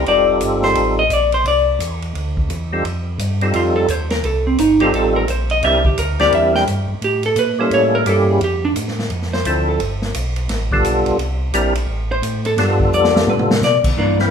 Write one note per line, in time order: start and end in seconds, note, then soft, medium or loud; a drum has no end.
0.06 0.40 F1 medium
0.06 1.03 G3 medium
0.06 1.04 C4 medium
0.06 1.04 D#4 medium
0.06 1.04 F4 medium
0.06 1.04 A4 medium
0.06 0.60 D5 medium
0.06 ride medium
0.40 0.75 G1 medium
0.40 hi-hat pedal medium
0.40 ride medium
0.63 0.96 C5 medium
0.63 snare soft
0.75 1.10 A1 medium
0.75 ride medium
0.99 1.11 D#5 loud
1.10 1.44 A#1 medium
1.10 1.33 D5 medium
1.10 hi-hat pedal medium
1.10 ride medium
1.32 1.46 C5 medium
1.32 ride soft
1.45 1.79 C2 medium
1.45 1.99 D5 medium
1.45 ride medium
1.79 2.14 E2 medium
1.79 hi-hat pedal medium
1.79 ride medium
2.02 ride soft
2.14 2.48 D2 medium
2.14 ride medium
2.37 kick medium
2.49 2.83 E2 medium
2.49 hi-hat pedal soft
2.49 ride medium
2.72 2.84 G3 medium
2.72 2.84 C4 soft
2.72 2.84 D#4 medium
2.72 2.84 F4 medium
2.72 2.84 A4 medium
2.84 3.18 F2 medium
2.84 ride medium
3.18 3.53 G2 medium
3.18 hi-hat pedal medium
3.18 ride medium
3.41 3.87 G3 medium
3.41 3.87 C4 medium
3.41 3.87 D#4 medium
3.41 3.87 F4 medium
3.41 3.87 A4 medium
3.41 ride soft
3.53 3.88 F2 medium
3.53 3.76 F4 medium
3.53 ride medium
3.76 3.90 A4 medium
3.88 4.22 D#2 medium
3.88 4.11 C5 medium
3.88 hi-hat pedal medium
3.88 ride medium
4.10 4.24 A#4 medium
4.10 snare soft
4.10 ride soft
4.23 4.57 C2 medium
4.23 4.46 A4 medium
4.23 ride soft
4.47 4.59 C4 soft
4.58 4.92 G1 medium
4.58 4.80 D#4 medium
4.58 hi-hat pedal medium
4.58 ride medium
4.80 5.25 G3 medium
4.80 5.26 C4 medium
4.80 5.26 D#4 medium
4.80 5.26 F4 medium
4.80 4.93 G4 medium
4.80 5.26 A4 medium
4.80 ride soft
4.93 5.27 A1 medium
4.93 5.15 A4 medium
4.93 ride medium
5.16 5.28 A#4 medium
5.28 5.62 A#1 medium
5.28 5.50 C5 medium
5.28 hi-hat pedal medium
5.28 ride medium
5.50 5.63 D#5 medium
5.50 ride soft
5.63 5.97 C2 medium
5.63 5.83 G3 medium
5.63 5.83 C4 medium
5.63 5.83 D4 medium
5.63 5.84 E4 medium
5.63 5.83 A#4 medium
5.63 5.85 E5 medium
5.63 ride medium
5.85 5.98 G4 soft
5.85 kick medium
5.97 6.31 D2 medium
5.97 6.19 A#4 medium
5.97 hi-hat pedal medium
5.97 ride medium
6.19 6.65 G3 medium
6.19 6.65 C4 medium
6.19 6.65 D4 medium
6.19 6.65 E4 medium
6.19 6.65 A#4 medium
6.19 6.33 D5 medium
6.19 snare soft
6.19 ride soft
6.32 6.66 E2 medium
6.32 6.55 E5 medium
6.32 ride medium
6.55 6.63 G5 medium
6.55 snare soft
6.67 6.87 G2 medium
6.67 hi-hat pedal soft
6.67 ride medium
6.88 6.95 G2 soft
7.01 7.35 A2 medium
7.01 7.24 G4 medium
7.01 ride medium
7.23 7.37 A4 medium
7.23 ride soft
7.36 7.70 A#2 medium
7.36 7.59 B4 medium
7.36 hi-hat pedal medium
7.36 ride medium
7.59 8.04 G3 medium
7.59 8.04 A#3 medium
7.59 8.04 C#4 medium
7.59 8.04 E4 medium
7.59 8.04 A4 medium
7.59 7.72 C5 medium
7.71 8.05 A2 medium
7.71 7.94 C#5 medium
7.71 ride medium
7.95 8.07 A#4 loud
8.05 8.39 G2 medium
8.05 8.41 G3 medium
8.05 8.41 A#3 medium
8.05 8.41 C#4 medium
8.05 8.41 E4 medium
8.05 8.42 G4 medium
8.05 hi-hat pedal soft
8.05 ride medium
8.09 8.30 A4 medium
8.30 8.42 G#4 medium
8.41 8.75 F2 medium
8.41 8.64 G4 medium
8.41 ride medium
8.65 8.72 D4 medium
8.76 9.10 A2 medium
8.76 hi-hat pedal medium
8.76 ride medium
8.88 snare soft
8.99 snare soft
9.10 9.44 F2 medium
9.10 ride medium
9.22 snare soft
9.33 9.65 C5 medium
9.33 snare soft
9.45 9.79 D2 medium
9.45 9.80 F3 medium
9.45 9.81 C4 medium
9.45 9.81 D4 medium
9.45 9.81 E4 medium
9.45 9.81 A4 medium
9.45 hi-hat pedal soft
9.45 ride medium
9.69 9.81 A4 soft
9.80 10.14 G1 medium
9.80 ride medium
10.02 snare soft
10.14 10.48 B1 medium
10.14 hi-hat pedal soft
10.14 ride medium
10.36 ride soft
10.49 10.83 A1 medium
10.49 snare soft
10.49 ride medium
10.72 11.17 G3 medium
10.72 11.17 B3 medium
10.72 11.17 D4 medium
10.72 11.18 F4 medium
10.72 11.18 A4 medium
10.72 kick medium
10.83 11.04 B1 medium
10.83 hi-hat pedal medium
10.83 ride medium
11.06 11.12 B1 soft
11.06 ride soft
11.17 11.52 C2 medium
11.17 ride medium
11.52 11.87 A#1 medium
11.52 11.73 G3 medium
11.52 11.74 C4 medium
11.52 11.74 D4 medium
11.52 11.74 E4 medium
11.52 11.74 A#4 medium
11.52 hi-hat pedal medium
11.52 ride medium
11.75 ride medium
11.87 12.22 A1 medium
12.12 12.43 C5 loud
12.22 12.57 A2 medium
12.22 hi-hat pedal medium
12.22 ride medium
12.45 12.54 A4 medium
12.45 ride medium
12.57 12.91 G2 medium
12.57 13.55 G3 medium
12.57 13.55 B3 medium
12.57 13.55 D4 medium
12.57 13.55 F4 medium
12.57 13.56 A4 medium
12.57 snare soft
12.57 ride medium
12.80 kick medium
12.92 13.26 F2 medium
12.92 13.26 D5 medium
12.92 hi-hat pedal medium
13.04 snare medium
13.16 snare medium
13.27 13.61 A2 medium
13.27 13.61 B4 medium
13.27 mid tom medium
13.39 mid tom medium
13.51 snare medium
13.61 13.82 B2 medium
13.61 13.77 D5 medium
13.61 snare medium
13.61 hi-hat pedal medium
13.84 13.91 B2 soft
13.84 kick medium
13.84 crash medium
13.97 14.31 G2 medium
13.97 14.17 E3 medium
13.97 14.18 A#3 medium
13.97 14.18 D4 medium
14.19 14.31 E3 medium
14.19 14.31 A#3 medium
14.19 14.31 C4 medium
14.19 14.31 E4 medium
14.19 snare soft